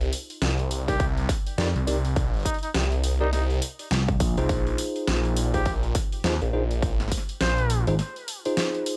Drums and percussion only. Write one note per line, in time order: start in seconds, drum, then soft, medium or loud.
0.01 open hi-hat soft
0.13 open hi-hat medium
0.30 open hi-hat soft
0.42 snare loud
0.42 open hi-hat soft
0.59 open hi-hat soft
0.71 open hi-hat medium
0.88 kick medium
0.88 open hi-hat soft
1.00 kick loud
1.00 open hi-hat soft
1.18 open hi-hat soft
1.29 kick loud
1.29 snare soft
1.29 open hi-hat medium
1.47 open hi-hat soft
1.58 snare loud
1.58 open hi-hat soft
1.76 open hi-hat soft
1.87 open hi-hat medium
2.05 open hi-hat soft
2.16 kick loud
2.16 open hi-hat soft
2.34 open hi-hat soft
2.37 open hi-hat soft
2.40 open hi-hat soft
2.43 kick medium
2.43 open hi-hat soft
2.46 open hi-hat medium
2.50 open hi-hat soft
2.54 open hi-hat soft
2.59 open hi-hat soft
2.63 open hi-hat soft
2.74 snare loud
2.74 open hi-hat soft
2.92 open hi-hat soft
3.04 open hi-hat medium
3.33 snare soft
3.33 open hi-hat soft
3.50 open hi-hat soft
3.62 open hi-hat medium
3.79 open hi-hat soft
3.91 snare loud
3.91 snare soft
3.91 open hi-hat soft
4.08 kick loud
4.08 open hi-hat soft
4.20 kick loud
4.20 open hi-hat medium
4.37 open hi-hat soft
4.49 kick loud
4.49 open hi-hat soft
4.67 open hi-hat soft
4.78 open hi-hat medium
4.96 open hi-hat soft
5.08 snare loud
5.08 open hi-hat soft
5.25 open hi-hat soft
5.37 open hi-hat medium
5.54 kick medium
5.54 open hi-hat soft
5.66 kick loud
5.66 open hi-hat soft
5.83 open hi-hat soft
5.95 kick loud
5.95 snare soft
5.95 open hi-hat medium
6.12 open hi-hat soft
6.24 snare loud
6.24 open hi-hat soft
6.42 open hi-hat soft
6.71 open hi-hat soft
6.82 kick loud
6.82 open hi-hat soft
7.00 snare soft
7.00 open hi-hat soft
7.08 kick medium
7.08 snare soft
7.08 open hi-hat medium
7.17 snare soft
7.29 open hi-hat soft
7.41 snare loud
7.41 open hi-hat soft
7.58 open hi-hat soft
7.70 open hi-hat medium
7.87 open hi-hat soft
7.99 snare soft
7.99 open hi-hat soft
8.16 open hi-hat soft
8.28 open hi-hat medium
8.45 open hi-hat soft
8.57 snare loud
8.57 snare soft
8.57 open hi-hat soft
8.75 open hi-hat soft
8.86 open hi-hat medium